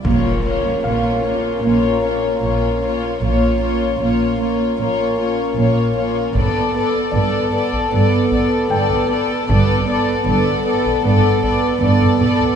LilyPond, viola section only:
\new Staff \with { instrumentName = "Viola section" } { \time 4/4 \key bes \lydian \tempo 4 = 77 bes8 bes8 bes8 bes8 bes8 bes8 bes8 bes8 | bes8 bes8 bes8 bes8 bes8 bes8 bes8 bes8 | b8 b8 b8 b8 b8 b8 b8 b8 | b8 b8 b8 b8 b8 b8 b8 b8 | }